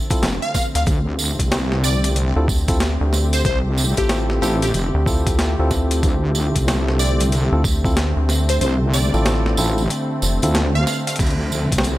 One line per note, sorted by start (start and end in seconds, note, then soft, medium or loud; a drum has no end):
0.00 11.98 D3 medium
0.00 0.87 F3 medium
0.00 11.98 A3 medium
0.00 11.98 C4 medium
0.10 0.27 C4 medium
0.10 0.27 E4 medium
0.10 0.27 F4 medium
0.10 0.27 A4 medium
0.10 kick loud
0.10 closed hi-hat medium
0.10 tambourine soft
0.22 0.39 F1 loud
0.22 snare loud
0.22 closed hi-hat medium
0.22 tambourine soft
0.42 0.52 F5 medium
0.54 0.68 F5 medium
0.54 kick medium
0.54 snare medium
0.54 tambourine medium
0.75 0.85 D2 loud
0.75 0.83 F5 medium
0.75 closed hi-hat medium
0.75 tambourine medium
0.86 1.36 D2 loud
0.86 11.20 G4 medium
0.86 kick loud
0.86 closed hi-hat soft
0.86 tambourine soft
1.19 tambourine medium
1.39 2.33 C2 loud
1.39 kick medium
1.39 closed hi-hat medium
1.39 tambourine soft
1.51 snare loud
1.51 closed hi-hat soft
1.51 tambourine soft
1.72 snare soft
1.84 2.09 D5 medium
1.84 tambourine medium
2.04 closed hi-hat medium
2.04 tambourine medium
2.16 closed hi-hat medium
2.16 tambourine soft
2.36 2.98 D2 loud
2.36 2.46 C4 medium
2.36 2.46 E4 medium
2.36 2.46 F4 medium
2.36 2.45 A4 medium
2.48 kick loud
2.48 tambourine medium
2.68 2.78 C4 medium
2.68 2.78 E4 medium
2.68 2.78 F4 medium
2.68 2.78 A4 loud
2.68 kick loud
2.68 closed hi-hat medium
2.68 tambourine medium
2.80 snare loud
2.80 closed hi-hat medium
2.80 tambourine soft
3.01 3.43 D2 loud
3.13 snare soft
3.13 tambourine medium
3.33 3.41 C5 medium
3.33 closed hi-hat medium
3.33 tambourine medium
3.45 3.94 C2 loud
3.45 3.59 C5 medium
3.45 kick loud
3.45 closed hi-hat medium
3.45 tambourine soft
3.77 tambourine medium
3.97 4.40 A1 medium
3.97 4.39 C4 medium
3.97 4.39 E4 medium
3.97 4.39 F4 medium
3.97 4.18 G4 loud
3.97 4.39 A4 medium
3.97 kick medium
3.97 closed hi-hat medium
3.97 tambourine medium
4.09 snare loud
4.09 closed hi-hat medium
4.09 tambourine soft
4.30 snare medium
4.42 4.72 A1 loud
4.42 4.65 C4 medium
4.42 4.65 E4 medium
4.42 4.65 F4 medium
4.42 4.55 G4 medium
4.42 4.65 A4 medium
4.42 tambourine medium
4.62 4.70 G4 medium
4.62 closed hi-hat medium
4.62 tambourine medium
4.74 4.91 F1 loud
4.74 closed hi-hat medium
4.74 tambourine soft
4.94 5.56 D2 loud
5.06 5.54 C4 medium
5.06 5.54 E4 medium
5.06 5.54 F4 medium
5.06 5.54 A4 loud
5.06 kick loud
5.06 tambourine medium
5.27 kick loud
5.27 closed hi-hat medium
5.27 tambourine soft
5.39 snare loud
5.39 closed hi-hat medium
5.39 tambourine soft
5.59 6.01 D2 loud
5.59 7.48 C4 medium
5.59 7.48 E4 medium
5.59 7.48 F4 medium
5.59 7.48 A4 medium
5.71 kick medium
5.71 snare medium
5.71 tambourine medium
5.91 closed hi-hat medium
5.91 tambourine medium
6.03 6.52 D2 loud
6.03 kick loud
6.03 closed hi-hat medium
6.03 tambourine soft
6.35 tambourine medium
6.56 7.49 C2 loud
6.56 kick medium
6.56 closed hi-hat medium
6.56 tambourine soft
6.68 snare loud
6.68 closed hi-hat medium
6.68 tambourine soft
6.88 snare medium
6.99 7.25 D5 medium
6.99 tambourine medium
7.20 closed hi-hat medium
7.20 tambourine medium
7.32 closed hi-hat medium
7.32 tambourine soft
7.52 8.14 D2 loud
7.52 7.62 C4 medium
7.52 7.62 E4 medium
7.52 7.62 F4 medium
7.52 7.62 A4 medium
7.64 kick loud
7.64 tambourine medium
7.85 7.94 C4 medium
7.85 7.94 E4 medium
7.85 7.94 F4 medium
7.85 7.94 A4 loud
7.85 kick loud
7.85 tambourine soft
7.97 snare loud
7.97 closed hi-hat medium
7.97 tambourine soft
8.17 8.59 D2 loud
8.29 snare medium
8.29 tambourine medium
8.49 8.57 C5 medium
8.49 closed hi-hat medium
8.49 tambourine medium
8.61 9.10 C2 loud
8.61 8.74 C5 medium
8.61 closed hi-hat medium
8.61 tambourine soft
8.93 9.58 D5 loud
8.93 tambourine medium
9.14 9.56 A1 loud
9.14 9.55 C4 medium
9.14 9.55 E4 medium
9.14 9.55 F4 medium
9.14 9.55 A4 medium
9.14 tambourine soft
9.26 snare loud
9.26 closed hi-hat medium
9.26 tambourine soft
9.46 snare medium
9.57 9.88 A1 loud
9.57 9.81 C4 medium
9.57 9.81 E4 medium
9.57 9.81 F4 medium
9.57 9.81 A4 medium
9.57 tambourine medium
9.78 tambourine medium
9.90 closed hi-hat medium
9.90 tambourine soft
10.22 10.40 F1 loud
10.22 tambourine medium
10.42 10.85 D2 medium
10.42 10.59 C4 medium
10.42 10.59 E4 medium
10.42 10.59 F4 medium
10.42 10.59 A4 medium
10.42 closed hi-hat medium
10.42 tambourine soft
10.54 snare loud
10.54 closed hi-hat medium
10.54 tambourine soft
10.75 10.85 F5 medium
10.87 11.00 F5 medium
10.87 snare medium
10.87 tambourine medium
11.07 11.15 F5 medium
11.07 closed hi-hat medium
11.07 tambourine soft
11.09 closed hi-hat soft
11.16 11.69 D2 loud
11.16 11.98 F3 loud
11.16 kick loud
11.16 closed hi-hat soft
11.20 closed hi-hat medium
11.20 tambourine soft
11.20 crash medium
11.27 closed hi-hat soft
11.30 closed hi-hat soft
11.52 tambourine medium
11.72 11.98 C2 medium
11.72 kick medium
11.72 closed hi-hat medium
11.72 tambourine soft
11.78 snare loud
11.83 closed hi-hat medium
11.83 tambourine soft